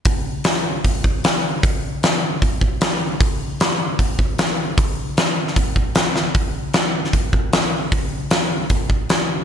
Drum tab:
HH |o---o---o---o---|o---o---o---o---|o---o---o---o---|o---o---o---o---|
SD |----o-------o---|----o-------o---|----o-------o---|----o--o----o-o-|
BD |o-------o-o-----|o-------o-o-----|o-------o-o-----|o-------o-o-----|

HH |o---o---o---o---|o---o---o---o---|
SD |----o--o----o---|----o-------o---|
BD |o-------o-o-----|o-------o-o-----|